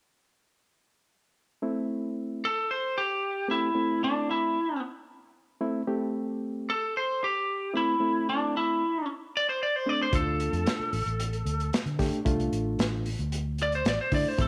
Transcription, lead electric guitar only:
2.45 2.69 A4 medium
2.71 2.95 C5 medium
2.98 3.48 G4 medium
3.51 4.01 E4 medium
4.04 4.29 D4 medium
4.31 4.81 E4 medium
6.70 6.94 A4 medium
6.97 7.21 C5 medium
7.24 7.74 G4 medium
7.77 8.27 E4 medium
8.29 8.54 D4 medium
8.57 9.07 E4 medium
9.37 9.48 D5 medium
9.49 9.61 C5 medium
9.63 9.76 D5 medium
9.76 9.89 C5 medium
9.89 10.01 D5 medium
10.02 10.14 C5 medium
10.15 11.70 A4 medium
13.63 13.74 D5 medium
13.75 13.87 C5 medium
13.88 14.00 D5 loud
14.01 14.13 C5 medium
14.14 14.28 D5 medium
14.28 14.40 C5 medium
14.41 14.48 A4 medium

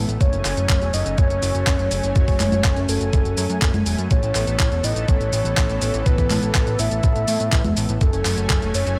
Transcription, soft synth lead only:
0.21 0.95 C#5 loud
0.94 1.20 D#5 loud
1.18 2.15 C#5 loud
2.16 2.90 C#5 loud
2.89 3.86 A4 medium
4.11 4.86 C#5 medium
4.84 5.10 D#5 loud
5.09 6.08 C#5 loud
6.06 6.81 B4 loud
6.79 7.77 E5 loud
8.02 8.76 A4 medium
8.75 8.99 C#5 loud

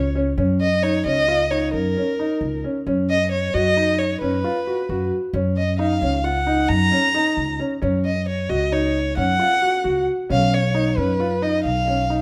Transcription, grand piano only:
0.15 0.27 C#4 medium
0.38 0.61 C#4 medium
0.83 0.95 D#4 medium
1.06 1.17 C#4 medium
1.28 1.40 F4 medium
1.51 1.74 D#4 medium
1.97 2.08 C#4 medium
2.19 2.43 D#4 medium
2.64 2.76 C#4 medium
2.87 3.10 C#4 medium
3.54 3.66 F#4 medium
3.77 4.00 D#4 medium
4.22 4.34 C#4 medium
4.44 4.56 F4 medium
4.67 4.79 F#4 medium
4.90 5.13 F#4 medium
5.34 5.57 C#4 medium
5.79 5.91 D#4 medium
6.02 6.13 C#4 medium
6.24 6.36 F4 medium
6.47 6.70 D#4 medium
6.92 7.03 C#4 medium
7.14 7.38 D#4 medium
7.59 7.71 C#4 medium
7.82 8.05 C#4 medium
8.49 8.61 F#4 medium
8.72 8.96 D#4 medium
9.17 9.29 C#4 medium
9.39 9.51 F4 medium
9.62 9.74 F#4 medium
9.84 10.08 F#4 medium
10.30 10.53 C#4 medium
10.74 10.86 D#4 medium
10.97 11.09 C#4 medium
11.20 11.32 F4 medium
11.42 11.66 D#4 medium
11.88 11.99 C#4 medium
12.10 12.22 D#4 medium

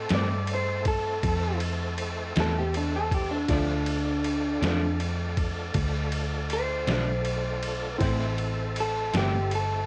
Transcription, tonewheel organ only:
0.00 3.45 A3 medium
0.00 3.45 C4 medium
0.00 3.45 E4 medium
0.00 3.45 A4 medium
3.50 7.97 A3 medium
3.50 7.97 D4 medium
3.50 7.97 F4 medium
3.50 7.97 A4 medium
8.00 9.86 A3 medium
8.00 9.86 C4 medium
8.00 9.86 E4 medium
8.00 9.86 A4 medium

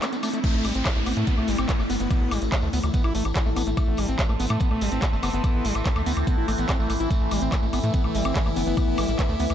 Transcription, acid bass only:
0.02 0.06 A3 medium
0.13 0.16 B3 medium
0.23 0.29 A3 medium
0.33 0.39 A3 medium
0.44 0.66 A3 medium
0.65 0.74 G3 loud
0.75 0.84 C4 medium
0.86 0.89 A3 medium
0.96 1.00 A3 medium
1.06 1.12 B3 loud
1.17 1.26 A3 loud
1.27 1.36 B3 medium
1.38 1.50 A3 loud
1.48 1.57 G3 loud
1.59 1.67 C4 medium
1.69 1.72 A3 medium
1.79 1.83 A3 medium
1.90 1.96 B3 loud
2.00 2.09 B3 medium
2.11 2.33 B3 medium
2.31 2.40 G3 loud
2.52 2.56 A3 medium
2.63 2.69 A3 medium
2.73 2.79 B3 loud
2.94 3.03 B3 medium
3.04 3.13 E4 medium
3.15 3.24 A3 medium
3.36 3.39 G3 medium
3.46 3.50 A3 loud
3.56 3.62 B3 loud
3.67 3.70 A3 medium
3.77 4.00 A3 medium
3.98 4.07 G3 loud
4.09 4.17 C4 medium
4.19 4.22 A3 medium
4.29 4.33 A3 medium
4.40 4.46 B3 loud
4.50 4.59 A3 loud
4.61 4.70 B3 medium
4.71 4.83 A3 loud
4.81 4.90 G3 loud
4.92 5.01 C4 medium
5.02 5.06 A3 medium
5.13 5.16 A3 medium
5.23 5.29 B3 loud
5.34 5.42 B3 medium
5.44 5.66 B3 medium
5.65 5.74 G3 loud
5.86 5.89 A3 medium
5.96 6.02 A3 medium
6.06 6.12 B3 loud
6.27 6.36 B3 medium
6.38 6.47 E4 medium
6.48 6.52 A3 medium
6.58 6.67 B3 medium
6.69 6.78 C4 medium
6.79 6.88 A3 loud
6.90 6.93 A3 medium
7.00 7.09 E4 loud
7.11 7.33 A3 medium
7.31 7.40 G3 loud
7.42 7.51 C4 medium
7.52 7.56 A3 medium
7.63 7.66 A3 medium
7.73 7.79 B3 loud
7.83 7.92 A3 loud
7.94 8.03 B3 medium
8.04 8.16 A3 loud
8.15 8.24 G3 loud
8.25 8.34 C4 medium
8.36 8.39 A3 medium
8.46 8.50 A3 medium
8.56 8.62 B3 loud
8.67 8.76 B3 medium
8.77 9.00 B3 medium
8.98 9.07 G3 loud
9.08 9.12 G3 medium
9.19 9.22 A3 medium
9.29 9.35 A3 medium
9.40 9.46 B3 loud

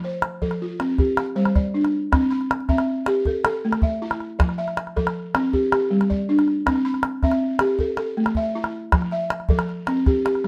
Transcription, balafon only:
0.00 0.24 F3 medium
0.04 0.61 C5 medium
0.42 0.80 F3 medium
0.42 0.99 A4 medium
0.62 1.18 F4 medium
0.80 0.99 C4 medium
0.99 1.56 G4 medium
1.18 1.74 F5 medium
1.36 1.74 G3 medium
1.36 1.93 C5 medium
1.55 2.12 D5 medium
1.74 2.12 D4 medium
2.12 2.50 C4 medium
2.31 2.87 B5 medium
2.69 3.07 C4 medium
2.69 3.26 E5 medium
3.07 3.26 G4 medium
3.27 3.44 A4 medium
3.45 4.01 A4 medium
3.65 4.02 A3 medium
3.83 4.39 E5 medium
4.02 4.39 E4 medium
4.39 4.77 F3 medium
4.58 5.15 E5 medium
4.96 5.34 F3 medium
4.96 5.53 A4 medium
5.35 5.53 C4 medium
5.53 5.71 G4 medium
5.72 6.28 G4 medium
5.91 6.28 G3 medium
6.10 6.66 D5 medium
6.29 6.66 D4 medium
6.66 7.04 C4 medium
6.85 7.42 B5 medium
7.23 7.61 C4 medium
7.23 7.80 E5 medium
7.60 7.79 G4 medium
7.80 7.97 A4 medium
7.98 8.55 A4 medium
8.17 8.55 A3 medium
8.37 8.93 E5 medium
8.55 8.93 E4 medium
8.92 9.30 F3 medium
9.12 9.68 E5 medium
9.49 9.87 F3 medium
9.49 10.06 A4 medium
9.88 10.06 C4 medium
10.07 10.24 G4 medium
10.25 10.48 G4 medium
10.44 10.48 G3 medium

